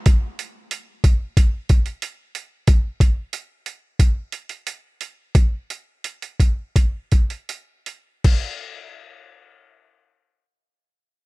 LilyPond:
\new DrumStaff \with { instrumentName = "Drums" } \drummode { \time 4/4 \tempo 4 = 87 <hh bd>8 hh8 hh8 <hh bd>8 <hh bd>8 <hh bd>16 hh16 hh8 hh8 | <hh bd>8 <hh bd>8 hh8 hh8 <hh bd>8 hh16 hh16 hh8 hh8 | <hh bd>8 hh8 hh16 hh16 <hh bd>8 <hh bd>8 <hh bd>16 hh16 hh8 hh8 | <cymc bd>4 r4 r4 r4 | }